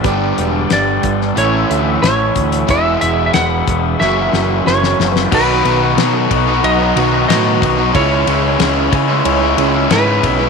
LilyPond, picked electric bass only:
\new Staff \with { instrumentName = "Picked electric bass" } { \clef bass \time 4/4 \key fis \minor \tempo 4 = 91 g,,8 e,,8 g,,8 g,,8 a,,8 d,8 a,,8 d,8 | e,,8 e,,8 e,,8 e,,8 fis,,8 fis,,8 fis,,8 fis,,8 | \key b \mixolydian b,,8 b,,8 b,8 b,,8 b,,8 b,,8 a,8 b,,8 | cis,8 cis,8 cis,8 cis8 cis,8 cis,8 gis,8 b,,8 | }